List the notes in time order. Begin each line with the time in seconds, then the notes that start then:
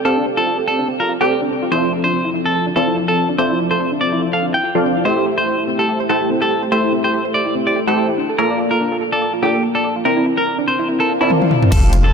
0.05 C4 G4 A4 D5 F5
0.17 D4
0.26 C4
0.37 F4 A4
0.47 F4
0.58 A4
0.67 A4
0.79 D4
0.88 C4
1.00 F4 A#4
1.09 F4
1.21 C4 G4 A4 D5 G5
1.30 A4
1.41 D4
1.51 C4
1.62 F4
1.72 F3 C4 E4 F4 A4 C5 D5 E5
1.83 A4
1.92 A4
2.04 D4 C5
2.13 C4
2.25 E4
2.34 E4
2.46 A4
2.55 A4
2.66 D4
2.76 F3 C4 F4 A4 D5 F5
2.87 E4
2.97 E4
3.08 A4
3.17 A4
3.29 D4
3.38 F3 C4 F4 A4 C5 D5 E5
3.50 E4
3.59 E4
3.71 A4 C5
3.80 A4
3.92 D4
4.01 C4 D5
4.12 E4
4.22 E4
4.33 A4 F5
4.43 D4
4.54 E4 G5
4.63 F4
4.75 F3 C4 F4 A4 D5 F5
4.84 D4
4.96 E4
5.05 A3 C4 E4 G4 C5 E5
5.16 G4
5.26 G4
5.37 C5
5.47 C5
5.58 E4
5.68 C4
5.79 G4 A4
5.88 G4
6.00 C5
6.09 A3 E4 G4 A4 C5 G5
6.21 E4
6.30 C4
6.41 G4 A4
6.51 G4
6.62 C5
6.72 A3 E4 G4 C5 E5
6.83 E4
6.93 C4
7.04 G4 C5
7.13 G4
7.25 C5
7.34 C5 D5
7.46 E4
7.55 C4
7.67 G4 D5
7.76 G4
7.87 A3 E4 G4 A4 C5 G5
7.97 C5
8.08 E4
8.18 D4
8.29 A4
8.38 A#3 F4 A4 A#4 D5 F5
8.50 D5
8.59 D5
8.71 F4 A#4
8.80 D4
8.92 A4
9.01 A4
9.12 A4 D5
9.22 D5
9.33 F4
9.43 A#3 D4 F4 G4 A4 D5 G5
9.54 A4
9.63 A4
9.75 A4 D5
9.84 D5
9.96 F4
10.05 C4 E4 A#4 D5 G5
10.17 E4
10.26 E4
10.37 A#4
10.47 A#4
10.58 D4
10.68 C4 C5
10.79 E4
10.89 E4, swell
11.00 A4 A#4
11.09 A#4
11.21 C4 E4 A#4 D5 A5
11.30 high tom
11.42 high tom
11.51 mid tom
11.63 mid tom
11.72 F1 A3 C4 D4 G4 A4 C5 F5, kick, closed hi-hat, crash, impact
11.83 F4
11.93 F4, closed hi-hat
12.04 A4